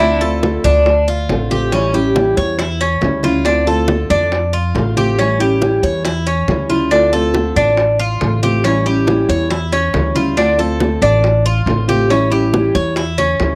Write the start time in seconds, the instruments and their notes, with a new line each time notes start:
Already playing: upright bass D2, violin E4
0.00 nylon-string guitar D3 A3 C4 F4, cuban tres D4, high conga
0.20 nylon-string guitar A3 C4 F4, cuban tres A4, high conga
0.42 nylon-string guitar D3 A3 C4 F4, high bongo, high conga
0.64 upright bass D2, cuban tres D4, high conga, low conga
0.86 muted nylon-string guitar stroke, high bongo, high conga
1.08 cuban tres F4, high conga
1.29 upright bass A1, nylon-string guitar D3 A3 C4 F4, high bongo, low bongo, high conga
1.50 nylon-string guitar A3 C4 F4, cuban tres G4, high conga
1.72 nylon-string guitar E3 G3 C#4 E4, cuban tres C#4, high bongo, high conga
1.93 nylon-string guitar G3 C#4 E4, cuban tres G4, high conga
2.15 nylon-string guitar E3 G3 C#4 E4, high bongo, high conga
2.37 upright bass E2, cuban tres C#5, high bongo
2.58 cuban tres E4, muted nylon-string guitar stroke, high bongo, high conga
2.80 cuban tres C#4, high bongo, high conga
3.01 upright bass D2, nylon-string guitar E3 G3 C#4 E4, high bongo, low bongo, high conga
3.23 nylon-string guitar G3 C#4 E4, cuban tres F4, high bongo, high conga
3.44 nylon-string guitar D3 A3 C4 F4, cuban tres D4, high bongo
3.66 nylon-string guitar A3 C4 F4, cuban tres A4, high conga
3.88 nylon-string guitar D3 A3 C4 F4, high bongo, high conga
4.10 upright bass F2, cuban tres D4, high conga, low conga
4.32 muted nylon-string guitar stroke, high bongo, high conga
4.53 cuban tres F4, high conga
4.75 upright bass A1, nylon-string guitar D3 A3 C4 F4, high bongo, low bongo, high conga
4.97 nylon-string guitar A3 C4 F4, cuban tres G4, high conga
5.18 nylon-string guitar E3 G3 C#4 E4, cuban tres C#4, high bongo
5.40 nylon-string guitar G3 C#4 E4, cuban tres G4
5.61 nylon-string guitar E3 G3 C#4 E4, high bongo, high conga
5.83 upright bass E2, cuban tres C#5, high bongo, high conga
6.05 cuban tres E4, muted nylon-string guitar stroke, high bongo
6.26 cuban tres C#4, high bongo, high conga
6.48 upright bass D2, nylon-string guitar E3 G3 C#4 E4, high bongo, low bongo, high conga
6.70 nylon-string guitar G3 C#4 E4, cuban tres F4, high bongo, high conga
6.91 nylon-string guitar D3 A3 C4 F4, cuban tres D4, high bongo, high conga
7.13 nylon-string guitar A3 C4 F4, cuban tres A4, high conga
7.34 nylon-string guitar D3 A3 C4 F4, high bongo, high conga
7.56 upright bass A1, cuban tres D4, high conga, low conga
7.77 muted nylon-string guitar stroke, high bongo, high conga
7.99 cuban tres F4, high conga
8.21 upright bass A1, nylon-string guitar D3 A3 C4 F4, high bongo, low bongo, high conga
8.43 nylon-string guitar A3 C4 F4, cuban tres G4, high conga
8.64 nylon-string guitar E3 G3 C#4 E4, cuban tres C#4, high bongo, high conga
8.86 nylon-string guitar G3 C#4 E4, cuban tres G4
9.07 nylon-string guitar E3 G3 C#4 E4, high bongo, high conga
9.29 upright bass E2, cuban tres C#5, high bongo, high conga
9.50 cuban tres E4, muted nylon-string guitar stroke, high bongo, high conga
9.72 cuban tres C#4, high bongo, high conga
9.93 upright bass D2, nylon-string guitar E3 G3 C#4 E4, high bongo, low bongo, high conga
10.15 nylon-string guitar G3 C#4 E4, cuban tres F4, high bongo, high conga
10.37 nylon-string guitar D3 A3 C4 F4, cuban tres D4, high bongo
10.58 nylon-string guitar A3 C4 F4, cuban tres A4, high conga
10.80 nylon-string guitar D3 A3 C4 F4, high bongo, high conga
11.02 upright bass A1, cuban tres D4, high conga, low conga
11.23 muted nylon-string guitar stroke, high bongo, high conga
11.46 cuban tres F4, high conga
11.66 upright bass A1, nylon-string guitar D3 A3 C4 F4, high bongo, low bongo, high conga
11.88 nylon-string guitar A3 C4 F4, cuban tres G4, high conga
12.09 nylon-string guitar E3 G3 C#4 E4, cuban tres C#4, high bongo
12.30 nylon-string guitar G3 C#4 E4, cuban tres G4
12.53 nylon-string guitar E3 G3 C#4 E4, high bongo, high conga
12.75 upright bass E2, cuban tres C#5, high bongo, high conga
12.96 cuban tres E4, muted nylon-string guitar stroke, high bongo, high conga
13.18 cuban tres C#4, high bongo, high conga
13.39 upright bass D2, nylon-string guitar E3 G3 C#4 E4, high bongo, low bongo